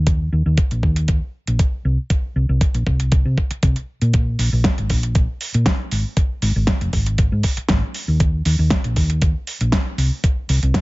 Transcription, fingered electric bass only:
0.00 0.29 D#2 medium
0.33 0.44 D#2 medium
0.46 0.56 D#2 medium
0.71 0.81 A#1 medium
0.83 1.19 D#2 medium
1.48 1.58 A#1 medium
1.85 1.96 C2 medium
2.36 2.47 C2 medium
2.49 2.59 C2 medium
2.75 2.85 A#1 medium
2.87 3.22 C2 medium
3.25 3.35 C3 medium
3.51 muted fingered electric bass stroke soft
3.63 3.74 C2 medium
4.02 4.36 A#2 medium
4.39 4.50 A#1 medium
4.53 4.63 A#1 loud
4.79 4.88 G#1 medium
4.90 5.25 A#1 medium
5.55 5.64 A#2 medium
5.92 6.03 G#1 medium
6.42 6.54 G#1 medium
6.56 6.66 G#1 loud
6.81 6.91 F1 medium
6.93 7.29 G#1 medium
7.32 7.42 G#2 medium
7.57 muted fingered electric bass stroke soft
7.69 7.81 G#1 loud
8.08 8.42 D#2 medium
8.46 8.57 D#2 medium
8.59 8.69 D#2 loud
8.85 8.95 A#1 medium
8.97 9.32 D#2 medium
9.61 9.71 A#1 medium
9.98 10.09 C2 medium
10.49 10.61 C2 medium
10.63 10.73 C2 loud

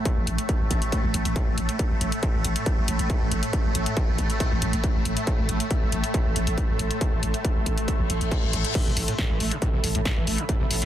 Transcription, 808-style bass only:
0.17 0.27 A1 medium
0.27 0.38 A1 loud
0.60 0.70 A1 medium
0.71 0.82 A1 loud
1.04 1.14 A1 medium
1.14 1.25 A1 loud
1.25 1.36 A1 medium
1.47 1.57 A1 medium
1.58 1.69 A1 loud
1.91 2.01 A1 medium
2.01 2.12 A1 loud
2.34 2.44 A1 medium
2.45 2.56 A1 loud
2.78 2.87 A1 medium
2.88 2.99 A1 loud
2.99 3.10 A1 medium
3.21 3.31 A1 medium
3.32 3.43 A1 loud
3.65 3.74 A1 medium
3.75 3.86 A1 loud
4.08 4.18 A1 medium
4.18 4.30 A1 loud
4.52 4.61 A1 medium
4.62 4.73 A1 loud
4.73 4.84 A1 medium
4.95 5.05 A1 medium
5.05 5.17 A1 loud
5.39 5.48 A1 medium
5.49 5.60 A1 loud
5.82 5.92 A1 medium
5.92 6.03 A1 loud
6.25 6.35 A1 medium
6.36 6.47 A1 loud
6.47 6.57 A1 medium
6.69 6.79 A1 medium
6.79 6.90 A1 loud
7.12 7.22 A1 medium
7.23 7.34 A1 loud
7.56 7.66 A1 medium
7.66 7.77 A1 loud
7.99 8.09 A1 medium
8.10 8.20 A1 loud
8.21 8.31 A1 medium
8.43 8.53 A1 medium
8.53 8.64 A1 loud
8.86 8.96 A1 medium
8.97 9.08 A1 loud
9.30 9.40 A1 medium
9.40 9.51 A1 loud
9.73 9.83 A1 medium
9.84 9.94 A1 loud
9.95 10.05 A1 medium
10.17 10.27 A1 medium
10.27 10.38 A1 loud
10.60 10.70 A1 medium
10.71 10.82 A1 loud

